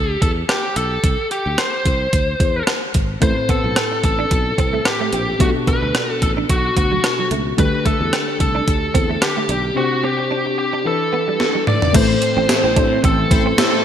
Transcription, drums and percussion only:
0.22 kick medium
0.22 closed hi-hat medium
0.49 cross-stick loud
0.49 closed hi-hat medium
0.76 closed hi-hat medium
1.04 kick loud
1.04 closed hi-hat medium
1.31 closed hi-hat medium
1.58 cross-stick loud
1.58 closed hi-hat medium
1.85 kick medium
1.85 closed hi-hat medium
2.13 kick medium
2.13 closed hi-hat medium
2.40 kick medium
2.40 closed hi-hat medium
2.67 cross-stick loud
2.67 closed hi-hat medium
2.94 kick medium
2.94 closed hi-hat medium
3.22 kick loud
3.22 closed hi-hat medium
3.49 kick medium
3.49 closed hi-hat medium
3.76 cross-stick loud
3.76 closed hi-hat medium
4.04 kick medium
4.04 closed hi-hat medium
4.31 kick medium
4.31 closed hi-hat medium
4.58 kick medium
4.58 closed hi-hat medium
4.85 cross-stick loud
4.85 closed hi-hat medium
5.13 closed hi-hat medium
5.40 kick loud
5.40 closed hi-hat medium
5.67 kick medium
5.67 closed hi-hat medium
5.95 cross-stick loud
5.95 closed hi-hat medium
6.22 kick medium
6.22 closed hi-hat medium
6.49 kick medium
6.49 closed hi-hat medium
6.77 kick medium
6.77 closed hi-hat medium
7.04 cross-stick loud
7.04 closed hi-hat medium
7.31 closed hi-hat medium
7.58 kick loud
7.58 closed hi-hat medium
7.86 kick medium
7.86 closed hi-hat medium
8.13 cross-stick loud
8.13 closed hi-hat medium
8.40 kick medium
8.40 closed hi-hat medium
8.68 kick medium
8.68 closed hi-hat medium
8.95 kick medium
8.95 closed hi-hat medium
9.22 cross-stick loud
9.22 closed hi-hat medium
9.49 closed hi-hat medium
11.40 snare medium
11.67 mid tom medium
11.82 floor tom medium
11.94 kick loud
11.94 closed hi-hat medium
11.94 crash loud
12.22 closed hi-hat medium
12.49 snare loud
12.49 closed hi-hat loud
12.49 tambourine medium
12.76 kick medium
12.76 closed hi-hat medium
13.04 kick medium
13.04 closed hi-hat loud
13.31 kick loud
13.31 closed hi-hat medium
13.58 snare loud
13.58 closed hi-hat loud
13.58 tambourine medium

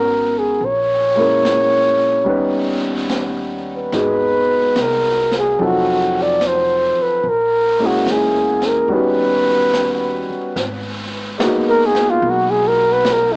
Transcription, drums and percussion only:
0.61 brush sweep soft
1.45 snare soft
1.45 hi-hat pedal soft
2.27 brush sweep soft
3.10 snare soft
3.10 hi-hat pedal soft
3.92 brush sweep soft
3.92 snare soft
4.76 snare soft
4.76 hi-hat pedal soft
5.32 snare soft
5.58 brush sweep soft
6.41 snare soft
6.41 hi-hat pedal soft
7.24 brush sweep soft
8.06 snare soft
8.06 hi-hat pedal soft
8.61 snare soft
8.90 brush sweep soft
9.73 snare soft
9.73 hi-hat pedal soft
10.56 brush sweep soft
10.56 snare soft
11.40 snare soft
11.40 hi-hat pedal soft
11.95 snare soft
12.23 brush sweep soft
13.05 snare soft
13.05 hi-hat pedal soft

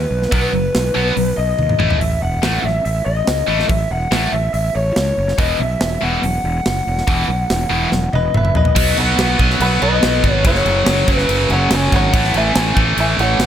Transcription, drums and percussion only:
0.22 snare soft
0.32 kick loud
0.32 open hi-hat medium
0.75 snare loud
0.75 open hi-hat medium
1.17 open hi-hat medium
1.59 high tom medium
1.69 mid tom medium
1.80 mid tom medium
1.90 floor tom loud
2.01 open hi-hat medium
2.43 snare loud
2.43 open hi-hat medium
2.85 open hi-hat medium
3.27 snare loud
3.27 open hi-hat soft
3.60 snare soft
3.69 kick loud
3.69 open hi-hat medium
4.12 snare loud
4.12 open hi-hat medium
4.54 open hi-hat medium
4.96 snare loud
4.96 open hi-hat medium
5.28 snare soft
5.38 kick loud
5.38 open hi-hat medium
5.81 snare loud
5.81 open hi-hat medium
6.23 open hi-hat medium
6.66 snare loud
6.66 open hi-hat medium
6.98 snare soft
7.08 kick loud
7.08 open hi-hat medium
7.50 snare loud
7.50 open hi-hat medium
7.92 snare medium
8.13 high tom medium
8.34 mid tom medium
8.45 mid tom medium
8.55 floor tom loud
8.65 floor tom loud
8.76 kick loud
8.76 crash loud
8.76 crash medium
8.97 crash medium
9.19 snare loud
9.19 crash medium
9.39 kick medium
9.39 crash medium
9.50 snare soft
9.60 crash medium
9.82 crash medium
10.03 snare loud
10.03 crash medium
10.24 kick medium
10.24 crash medium
10.45 kick loud
10.45 crash medium
10.55 snare soft
10.66 crash medium
10.86 snare loud
10.86 crash medium
11.08 kick medium
11.08 crash medium
11.18 snare soft
11.29 crash medium
11.50 crash medium
11.71 snare loud
11.71 crash medium
11.92 kick medium
11.92 crash medium
12.14 kick loud
12.14 crash loud
12.24 snare soft
12.34 crash medium
12.55 snare loud
12.55 crash medium
12.77 kick medium
12.77 crash medium
12.98 crash medium
13.19 crash medium
13.40 snare loud
13.40 crash medium

